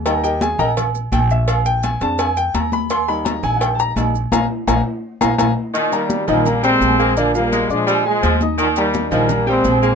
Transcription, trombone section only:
\new Staff \with { instrumentName = "Trombone section" } { \clef bass \time 4/4 \key ees \major \tempo 4 = 169 r1 | r1 | r1 | r1 |
<bes, ees>8 <ees g>4 <g bes>4 <aes c'>4. | <f bes>8 <g bes>4 <f aes>4 <f aes>4 r8 | <bes, ees>8 <ees g>4 <g bes>4 <aes c'>4. | }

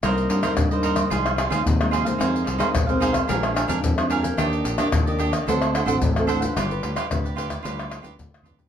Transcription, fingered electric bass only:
\new Staff \with { instrumentName = "Fingered electric bass" } { \clef bass \time 4/4 \key c \minor \tempo 4 = 110 c,8 g,16 r16 g,4 c,8. ees,16 ees,4 | f,8 c,16 r16 b,,4 bes,,8. f,16 f,4 | ees,8 bes,,16 r16 ees,4 d,8. a,,16 a,,4 | g,,8 d,16 r16 d,4 d,8. d,16 d,4 | }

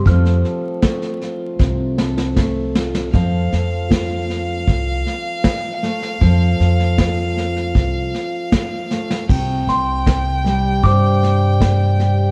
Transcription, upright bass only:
\new Staff \with { instrumentName = "Upright bass" } { \clef bass \time 4/4 \key f \major \tempo 4 = 78 f,8 r4. c,2 | f,8 f,4. c,8 r4. | f,8 f,4. c,8 r4. | c,8 c,4. g,2 | }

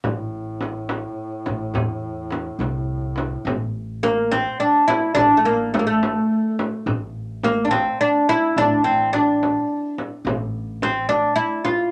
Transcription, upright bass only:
\new Staff \with { instrumentName = "Upright bass" } { \clef bass \time 3/4 \tempo 4 = 106 a,,2 r8 a,,8 | e,4. c,4. | a,,2 r4 | a,,2 r4 |
a,,2 r4 | a,,2 r4 | a,,2 r4 | }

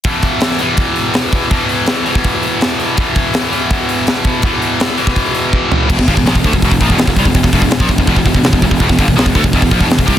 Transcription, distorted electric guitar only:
\new Staff \with { instrumentName = "Distorted electric guitar" } { \clef bass \time 4/4 \key c \major \tempo 4 = 165 <e, b, e>4. <e, b, e>2~ <e, b, e>8 | <e, b, e>4. <e, b, e>2~ <e, b, e>8 | <e, b, e>4. <e, b, e>2~ <e, b, e>8 | <e, b, e>4. <e, b, e>2~ <e, b, e>8 |
<e, b,>16 <e, b,>16 <g, d>16 <e, b,>16 <ais, f>16 <e, b,>16 <d a>16 <e, b,>16 <e, b,>16 <e, b,>16 <ais, f>16 <e, b,>16 <e, b,>16 <e, b,>16 <c g>16 <e, b,>16 | <e, b,>16 <e, b,>16 <e, b,>16 <e, b,>16 <e, b,>16 <ais, f>16 <e, b,>16 <e, b,>16 <e, b,>16 <e, b,>16 <e, b,>16 <e, b,>16 <e, b,>16 <e, b,>16 <e, b,>16 <e, b,>16 | <e, b,>16 <e, b,>16 <g, d>16 <e, b,>16 <ais, f>16 <e, b,>16 <d a>16 <e, b,>16 <e, b,>16 <e, b,>16 <ais, f>16 <e, b,>16 <e, b,>16 <e, b,>16 <c g>16 b,16 | }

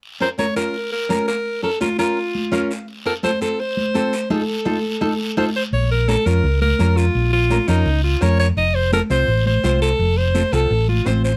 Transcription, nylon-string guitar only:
\new Staff \with { instrumentName = "Nylon-string guitar" } { \time 4/4 \key bes \minor \tempo 4 = 169 << { r1 | r2. f''4 | r1 | <ees' f' a'>8 r8 <ees' f' a'>8 r8 <ees' f' a'>8 r8 <ees' f' a'>8 r8 |
r1 | r1 | r1 | r1 | } \\ { r8 <des' f' bes'>8 <des' f' bes'>8 <des' f' bes'>8 r4 <des' f' bes'>8 r8 | r8 <des' f' bes'>8 <des' f' bes'>8 <des' f' bes'>8 r4 <des' f' bes'>8 r8 | r8 <c' f' a'>8 <c' f' a'>8 <c' f' c''>8 r4 <c' f' a'>8 r8 | r1 |
r4 <des' f' bes'>8 <des' f' bes'>8 r4 <des' f' bes'>8 r8 | r4 <des' f' bes'>8 <des' f' bes'>8 r4 <des' f' bes'>8 r8 | r4 <c' f' a'>8 <c' f' c''>8 r4 <c' f' c''>8 r8 | r4 <c' f' a'>8 <c' f' a'>8 r4 <c' f' c''>8 r8 | } >> }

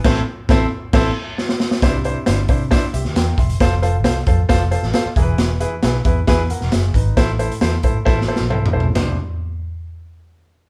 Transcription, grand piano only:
<<
  \new Staff \with { instrumentName = "Grand piano" } { \time 4/4 \key a \phrygian \tempo 4 = 135 << { r1 | r2 r8 <g' e''>8 <bes' g''>8 <e'' c'''>8~ | <e'' c'''>8 r2. r8 | r2 r8 <bes' fis''>8 <gis' e''>8 <ees' b'>8~ |
<ees' b'>8 r2. r8 | r1 | } \\ { <a, c' e' a' c''>8 r8 <c' e' a' c''>8 r8 <c' e' a' c''>8 r4. | <d' e' c''>8 <d' e' c''>8 <d' e' c''>8 <d' e' c''>8 <d' e' c''>8 r4. | <f' a' c''>8 <f' a' c''>8 <f' a' c''>8 <f' a' c''>8 <f' a' c''>8 <f' a' c''>8 <f' a' c''>8 <e' gis' bes' b'>8~ | <e' gis' bes' b'>8 <e' gis' b'>8 <e' gis' b'>8 <e' gis' b'>8 <e' gis' b'>8 r4. |
<e' a' c''>8 <e' a' c''>8 <e' a' c''>8 <e' a' c''>8 <e' a' c''>8 <e' a' c''>8 <e' a' c''>8 <e' a' c''>8 | <d' e' c''>8 r2. r8 | } >> }
  \new Staff \with { instrumentName = "Grand piano" } { \clef bass \time 4/4 \key a \phrygian r1 | c4. r2 r8 | r2. r8 e8~ | e4 r2. |
a,4. r2 r8 | c,8 r2. r8 | }
>>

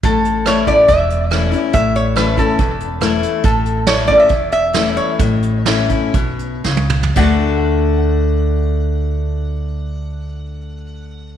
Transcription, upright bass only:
\new Staff \with { instrumentName = "Upright bass" } { \clef bass \time 4/4 \key a \mixolydian \tempo 4 = 131 a,,2 e,,2 | a,,2 e,,2 | a,,2 e,,2 | a,,2 b,,4 cis,4 |
d,1~ | d,1 | }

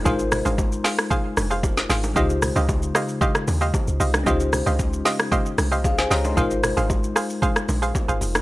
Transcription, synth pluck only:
\new Staff \with { instrumentName = "Synth pluck" } { \time 4/4 \key aes \major \tempo 4 = 114 <aes' c'' f''>16 r8 <aes' c'' f''>8. <aes' c'' f''>8 <aes' c'' f''>8. <aes' c'' f''>16 r8 <aes' c'' f''>16 r16 | <g' c'' ees'' f''>16 r8 <g' c'' ees'' f''>8. <g' c'' ees'' f''>8 <g' c'' ees'' f''>8. <g' c'' ees'' f''>16 r8 <g' c'' ees'' f''>16 r16 | <g' c'' ees'' f''>16 r8 <g' c'' ees'' f''>8. <g' c'' ees'' f''>8 <g' c'' ees'' f''>8. <g' c'' ees'' f''>16 r8 <g' c'' ees'' f''>16 r16 | <aes' c'' f''>16 r8 <aes' c'' f''>8. <aes' c'' f''>8 <aes' c'' f''>8. <aes' c'' f''>16 r16 <aes' c'' f''>16 r8 | }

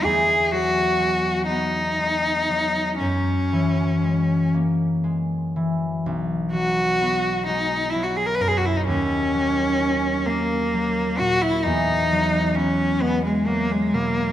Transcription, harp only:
\new Staff \with { instrumentName = "Harp" } { \clef bass \time 6/8 \key b \major \tempo 4. = 42 <e, fis b>8 fis8 gis8 b8 gis8 fis8 | fis,8 e8 gis8 ais8 gis8 e8 | b,,8 fis8 b8 gis8 fis8 fis,8 | dis,8 fis8 cis'8 ais8 fis8 ais,8 |
e,8 fis8 b8 gis8 fis8 b,8 | }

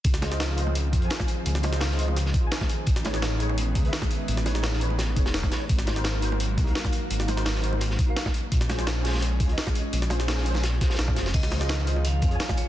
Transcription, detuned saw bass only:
\new Staff \with { instrumentName = "Detuned saw bass" } { \clef bass \time 4/4 \key des \major \tempo 4 = 170 des,2~ des,8 f,8 r4 | des,2~ des,8 r4. | a,,2~ a,,8 cis,8 r4 | a,,2~ a,,8 e,,4 r8 |
aes,,2~ aes,,8 c,8 r4 | aes,,2~ aes,,8 r4. | bes,,2~ bes,,8 des,8 r4 | bes,,2~ bes,,8 r8 bes,,8 f,,8 |
des,2~ des,8 f,8 r4 | }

